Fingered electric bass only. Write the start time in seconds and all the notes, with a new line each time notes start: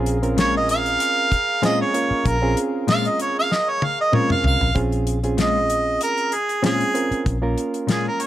Already playing: A#1
2.11 muted fingered electric bass stroke
2.25 A#1
4.44 C2
4.61 A#1
4.76 A#1
7.11 muted fingered electric bass stroke
7.26 A#1